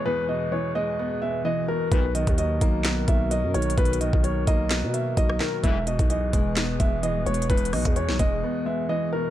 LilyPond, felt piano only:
\new Staff \with { instrumentName = "Felt piano" } { \clef bass \time 4/4 \key e \lydian \tempo 4 = 129 <e, b, e gis b>8 b,8 e8 gis8 b8 gis8 e8 b,8 | b,8 dis8 fis8 ais8 b8 ais8 fis8 dis8 | b,8 dis8 fis8 ais8 b8 ais8 fis8 dis8 | e,8 b,8 e8 gis8 b8 gis8 e8 b,8 |
e,8 b,8 e8 gis8 b8 gis8 e8 b,8 | }